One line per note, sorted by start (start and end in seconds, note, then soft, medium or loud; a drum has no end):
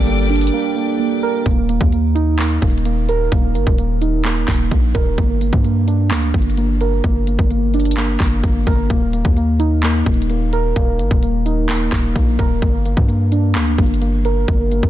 0.00 0.51 G1 loud
0.00 1.40 G3 medium
0.00 1.42 A#3 medium
0.00 1.42 D4 medium
0.00 1.45 A4 medium
0.00 0.76 A#4 medium
0.00 1.42 D5 medium
0.00 1.42 G5 medium
0.00 1.42 D6 loud
0.06 0.52 A#3 medium
0.06 closed hi-hat medium
0.30 1.46 D4 medium
0.30 closed hi-hat soft
0.35 closed hi-hat medium
0.41 closed hi-hat medium
0.47 closed hi-hat medium
0.53 0.75 A#3 medium
0.76 0.98 A#3 medium
0.99 1.45 A#3 medium
1.23 1.46 A#4 medium
1.46 1.79 D#1 loud
1.46 1.68 A#3 medium
1.46 kick loud
1.46 closed hi-hat medium
1.69 1.91 A#3 medium
1.69 closed hi-hat medium
1.81 2.59 D#2 loud
1.81 kick loud
1.92 2.38 A#3 medium
1.92 closed hi-hat medium
2.15 3.55 D#4 medium
2.15 closed hi-hat medium
2.39 2.60 A#3 medium
2.39 clap loud
2.39 closed hi-hat medium
2.62 3.29 D#1 loud
2.62 2.84 A#3 medium
2.62 kick medium
2.62 closed hi-hat soft
2.70 closed hi-hat medium
2.78 closed hi-hat medium
2.85 3.31 A#3 medium
2.85 closed hi-hat medium
3.09 4.48 A#4 medium
3.09 closed hi-hat medium
3.32 3.57 D#1 loud
3.32 3.54 A#3 loud
3.32 kick loud
3.32 closed hi-hat medium
3.55 3.66 G1 loud
3.55 3.77 A#3 medium
3.55 closed hi-hat medium
3.67 4.45 D#1 loud
3.67 kick medium
3.78 4.23 A#3 medium
3.78 closed hi-hat medium
4.01 5.18 D#4 medium
4.01 closed hi-hat medium
4.25 4.47 A#3 medium
4.25 clap loud
4.25 closed hi-hat medium
4.48 4.71 D#1 loud
4.48 4.70 A#3 medium
4.48 kick medium
4.48 clap loud
4.48 closed hi-hat medium
4.71 4.94 A#1 loud
4.71 5.17 A#3 medium
4.71 kick medium
4.71 closed hi-hat medium
4.94 5.17 D#1 loud
4.94 5.18 A#4 medium
4.94 kick loud
4.94 closed hi-hat medium
5.18 5.51 G1 loud
5.18 5.40 A#3 loud
5.18 kick loud
5.18 closed hi-hat medium
5.41 5.63 A#3 medium
5.41 closed hi-hat medium
5.53 6.12 G2 loud
5.53 kick loud
5.64 6.10 A#3 medium
5.64 closed hi-hat medium
5.88 7.27 D4 medium
5.88 closed hi-hat medium
6.11 6.33 D2 loud
6.11 6.33 A#3 medium
6.11 clap loud
6.11 closed hi-hat medium
6.34 7.01 G1 loud
6.34 6.56 A#3 medium
6.34 kick medium
6.34 closed hi-hat soft
6.42 closed hi-hat medium
6.50 closed hi-hat medium
6.57 7.03 A#3 medium
6.57 closed hi-hat medium
6.81 8.20 A#4 medium
6.81 closed hi-hat medium
7.04 7.38 G1 loud
7.04 7.26 A#3 medium
7.04 kick loud
7.04 closed hi-hat medium
7.27 7.50 A#3 medium
7.27 closed hi-hat medium
7.39 8.17 G1 loud
7.39 kick loud
7.51 7.96 A#3 medium
7.51 closed hi-hat medium
7.74 8.90 D4 medium
7.74 closed hi-hat soft
7.80 closed hi-hat medium
7.85 closed hi-hat medium
7.91 closed hi-hat medium
7.97 8.19 A#3 medium
7.97 clap loud
7.97 closed hi-hat medium
8.20 8.43 G1 loud
8.20 8.42 A#3 medium
8.20 kick loud
8.20 clap loud
8.20 closed hi-hat medium
8.43 8.66 G1 loud
8.43 8.89 A#3 medium
8.43 kick loud
8.43 closed hi-hat medium
8.67 8.89 G1 loud
8.67 8.90 A#4 medium
8.67 kick loud
8.67 open hi-hat medium
8.90 9.24 D#1 loud
8.90 9.12 A#3 medium
8.90 kick loud
8.90 closed hi-hat medium
9.13 9.36 A#3 medium
9.13 closed hi-hat medium
9.25 10.03 D#2 loud
9.25 kick medium
9.37 9.82 A#3 medium
9.37 closed hi-hat medium
9.59 10.99 D#4 medium
9.59 closed hi-hat medium
9.83 10.05 A#3 medium
9.83 clap loud
9.83 closed hi-hat medium
10.06 10.73 D#1 loud
10.06 10.28 A#3 medium
10.06 kick medium
10.06 closed hi-hat soft
10.14 closed hi-hat medium
10.22 closed hi-hat medium
10.30 10.75 A#3 medium
10.30 closed hi-hat medium
10.53 11.92 A#4 medium
10.53 closed hi-hat medium
10.76 11.01 D#1 loud
10.76 10.98 A#3 loud
10.76 kick loud
10.76 closed hi-hat medium
10.99 11.10 G1 medium
10.99 11.21 A#3 medium
10.99 closed hi-hat medium
11.11 11.89 D#1 loud
11.11 kick loud
11.23 11.68 A#3 medium
11.23 closed hi-hat medium
11.46 12.62 D#4 medium
11.46 closed hi-hat medium
11.69 11.91 A#3 medium
11.69 clap loud
11.69 closed hi-hat medium
11.92 12.15 D#1 loud
11.92 12.14 A#3 medium
11.92 kick medium
11.92 clap loud
11.92 closed hi-hat medium
12.15 12.38 A#1 loud
12.15 12.61 A#3 medium
12.15 kick loud
12.15 closed hi-hat medium
12.39 12.61 D#1 loud
12.39 12.62 A#4 medium
12.39 kick loud
12.39 closed hi-hat medium
12.62 12.96 G1 loud
12.62 12.84 A#3 medium
12.62 kick loud
12.62 closed hi-hat medium
12.85 13.07 A#3 medium
12.85 closed hi-hat medium
12.97 13.57 G2 loud
12.97 kick loud
13.08 13.54 A#3 medium
13.08 closed hi-hat medium
13.32 14.71 D4 medium
13.32 closed hi-hat medium
13.55 13.77 D2 loud
13.55 13.77 A#3 medium
13.55 clap loud
13.55 closed hi-hat medium
13.78 14.45 G1 loud
13.78 14.00 A#3 medium
13.78 kick medium
13.78 closed hi-hat soft
13.86 closed hi-hat medium
13.94 closed hi-hat medium
14.01 14.47 A#3 medium
14.01 closed hi-hat medium
14.25 14.90 A#4 medium
14.25 closed hi-hat medium
14.48 14.82 G1 loud
14.48 14.70 A#3 loud
14.48 kick loud
14.48 closed hi-hat medium
14.71 14.90 A#3 medium
14.71 closed hi-hat medium
14.83 14.90 G1 loud
14.83 kick loud